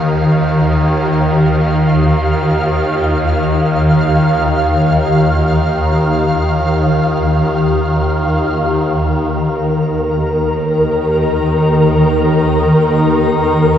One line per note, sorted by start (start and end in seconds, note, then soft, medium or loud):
0.00 8.62 D#2 medium
0.00 8.62 D#3 medium
0.00 8.66 F5 medium
8.62 13.78 D#2 medium
8.62 13.78 D#3 medium
8.62 13.78 A#4 medium
10.22 13.78 A#3 medium
10.95 13.78 D#4 medium